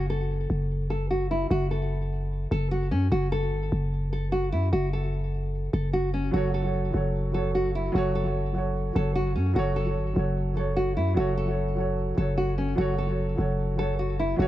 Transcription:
Already playing: 808-style bass F#1
0.10 nylon-string guitar A4
0.50 808-style bass F#1
0.90 nylon-string guitar A4
1.10 nylon-string guitar F#4
1.31 nylon-string guitar E4
1.51 808-style bass F#1, nylon-string guitar F#4
1.71 nylon-string guitar A4
2.51 808-style bass F#1, nylon-string guitar A4
2.71 nylon-string guitar F#4
2.91 808-style bass F#2, nylon-string guitar C#4
3.12 808-style bass F#1, nylon-string guitar F#4
3.32 nylon-string guitar A4
3.52 808-style bass G1
3.72 808-style bass F#1
4.13 nylon-string guitar A4
4.32 nylon-string guitar F#4
4.52 808-style bass F#2, nylon-string guitar E4
4.73 808-style bass F#1, nylon-string guitar F#4
4.93 nylon-string guitar A4
5.73 808-style bass F#1, nylon-string guitar A4
5.93 nylon-string guitar F#4
6.14 nylon-string guitar C#4
6.31 808-style bass F#1, grand piano F#3 F#4 A4, nylon-string guitar F#4
6.37 grand piano C#5
6.54 nylon-string guitar A4
6.62 grand piano F#3 F#4 A4
6.67 grand piano C#5
6.91 808-style bass F#1, grand piano F#3 F#4 A4
6.97 grand piano C#5
7.32 grand piano F#3 F#4 A4, nylon-string guitar A4
7.37 grand piano C#5
7.55 nylon-string guitar F#4
7.75 nylon-string guitar E4
7.92 808-style bass F#1, grand piano F#3 F#4 A4, nylon-string guitar F#4
7.98 grand piano C#5
8.15 nylon-string guitar A4
8.23 grand piano F#3 F#4 A4
8.28 grand piano C#5
8.53 grand piano F#3 F#4 A4
8.58 grand piano C#5
8.93 808-style bass F#1, grand piano F#3 F#4 A4, nylon-string guitar A4
8.98 grand piano C#5
9.15 nylon-string guitar F#4
9.36 808-style bass F#2, nylon-string guitar C#4
9.53 808-style bass F#1, grand piano F#3 F#4 A4, nylon-string guitar F#4
9.59 grand piano C#5
9.76 nylon-string guitar A4
9.84 grand piano F#3 F#4 A4
9.90 grand piano C#5
9.96 808-style bass G1
10.14 808-style bass F#1, grand piano F#3 F#4 A4
10.19 grand piano C#5
10.54 grand piano F#3 F#4 A4, nylon-string guitar A4
10.59 grand piano C#5
10.77 nylon-string guitar F#4
10.97 808-style bass F#2, nylon-string guitar E4
11.14 808-style bass F#1, grand piano F#3 F#4 A4, nylon-string guitar F#4
11.20 grand piano C#5
11.37 nylon-string guitar A4
11.45 grand piano F#3 F#4 A4
11.51 grand piano C#5
11.75 grand piano F#3 F#4 A4
11.80 grand piano C#5
12.15 808-style bass F#1, grand piano F#3 F#4 A4, nylon-string guitar A4
12.21 grand piano C#5
12.38 nylon-string guitar F#4
12.58 nylon-string guitar C#4
12.75 808-style bass F#1, grand piano F#3 F#4 A4, nylon-string guitar F#4
12.81 grand piano C#5
12.98 nylon-string guitar A4
13.06 grand piano F#3 F#4 A4
13.12 grand piano C#5
13.36 808-style bass F#1, grand piano F#3 F#4 A4
13.41 grand piano C#5
13.76 grand piano F#3 F#4 A4, nylon-string guitar A4
13.81 grand piano C#5
13.99 nylon-string guitar F#4
14.19 nylon-string guitar E4
14.36 808-style bass F#1, grand piano F#3 F#4 A4, nylon-string guitar F#4
14.42 grand piano C#5

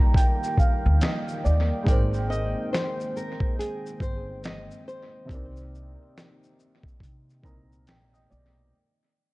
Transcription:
Already playing: felt piano D#3 D#4 F4 G4 D5 A#5, analog synth pad D#3 G3 A#3 D#4 G5
0.14 felt piano G5, kick, closed hi-hat, shaker
0.44 shaker
0.57 felt piano F5, kick, shaker
0.86 upright bass D2
1.01 felt piano D#5, snare, closed hi-hat, shaker
1.28 shaker
1.44 upright bass D#2, felt piano D5, shaker
1.83 felt piano G#3 D#4, kick
1.87 upright bass G#1, analog synth pad G#3 C4, felt piano A#4 G5, nylon-string guitar D5, closed hi-hat, shaker
1.91 felt piano C5
2.14 shaker
2.30 nylon-string guitar D#5, shaker
2.73 nylon-string guitar C5, snare, closed hi-hat, shaker
3.00 shaker
3.17 nylon-string guitar A#4, shaker
3.40 kick
3.59 nylon-string guitar G#4, closed hi-hat, shaker
3.87 shaker
4.00 upright bass G1, nylon-string guitar C5, kick, shaker
4.44 nylon-string guitar D#5, snare, closed hi-hat, shaker
4.71 shaker
4.88 nylon-string guitar C5, shaker
5.25 felt piano C3 C4, kick
5.30 upright bass C2, felt piano D4 A#4 D5, analog synth pad D#4, closed hi-hat, shaker
5.36 felt piano D#4
5.56 shaker
5.75 shaker
6.18 snare, closed hi-hat, shaker
6.43 shaker
6.60 shaker
6.83 kick
6.88 shaker
7.00 upright bass C3, kick, closed hi-hat, shaker
7.29 shaker
7.42 upright bass C2, felt piano A#2 C4 D#4 A#4 A#5, kick, shaker
7.46 felt piano D#5
7.72 shaker
7.87 upright bass A#1, felt piano G5, snare, closed hi-hat, shaker
8.13 felt piano D#5, shaker
8.30 upright bass B1, felt piano D5, shaker

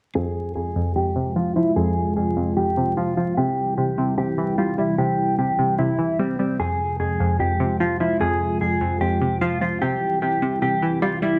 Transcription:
0.15 synth pluck F2, analog synth pad C3 F3 G#3 F4, clean electric guitar G#4
0.55 synth pluck F2, clean electric guitar G#4
0.76 synth pluck F2
0.96 synth pluck F2, clean electric guitar G4
1.16 synth pluck C3
1.36 synth pluck F3, clean electric guitar F4
1.56 synth pluck F3, clean electric guitar E4
1.76 synth pluck F2, clean electric guitar G#4
2.16 synth pluck F2, clean electric guitar G#4
2.37 synth pluck F2
2.57 synth pluck F2, clean electric guitar G4
2.77 synth pluck C3
2.97 synth pluck F3, clean electric guitar F4
3.17 synth pluck F3, clean electric guitar F4
3.37 synth pluck C3, analog synth pad E3 G3 E4, clean electric guitar G4
3.78 synth pluck C3, clean electric guitar G4
3.98 synth pluck C3
4.18 synth pluck C3, clean electric guitar G4
4.38 synth pluck E3
4.58 synth pluck G3, clean electric guitar F4
4.78 synth pluck G3, clean electric guitar E4
4.98 synth pluck C3, clean electric guitar G4
5.39 synth pluck C3, clean electric guitar G4
5.59 synth pluck C3
5.79 synth pluck C3, clean electric guitar E4
5.99 synth pluck E3
6.19 synth pluck G3, clean electric guitar C4
6.39 synth pluck G3, clean electric guitar C4
6.59 synth pluck F2, analog synth pad F3 G#3 F4, clean electric guitar G#4
7.00 synth pluck F2, clean electric guitar G#4
7.20 synth pluck F2
7.40 synth pluck F2, clean electric guitar G4
7.60 synth pluck C3
7.80 synth pluck F3, clean electric guitar F4
8.00 synth pluck F3, clean electric guitar E4
8.21 synth pluck F2, clean electric guitar G#4
8.61 synth pluck F2, clean electric guitar G#4
8.81 synth pluck F2
9.01 synth pluck F2, clean electric guitar G4
9.22 synth pluck C3
9.41 synth pluck F3, clean electric guitar F4
9.61 synth pluck F3, clean electric guitar F4
9.82 analog synth pad C3 E3 G3 E4, synth pluck C3, clean electric guitar G4
10.22 synth pluck C3, clean electric guitar G4
10.42 synth pluck C3
10.62 synth pluck C3, clean electric guitar G4
10.82 synth pluck E3
11.02 synth pluck G3, clean electric guitar F4
11.22 synth pluck G3, clean electric guitar E4

